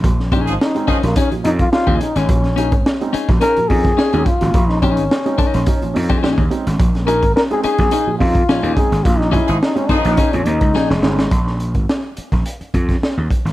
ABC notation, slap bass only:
X:1
M:4/4
L:1/16
Q:1/4=106
K:Bbm
V:1 name="Slap bass" clef=bass
B,,,3 A,,, z3 B,,, z2 F,,2 z E,, z A,,, | B,,,3 A,,, z3 B,,, z2 F,,2 z E,, z A,,, | B,,,3 A,,, z3 B,,, z2 F,,2 z E,, z A,,, | B,,,3 A,,, z3 B,,, z2 F,,2 z E,, z A,,, |
B,,,3 A,,, z3 B,,, z F,, E,, D,, z F,,, =G,,, A,,, | B,,,3 A,,, z3 B,,, z2 F,,2 z E,, z A,,, |]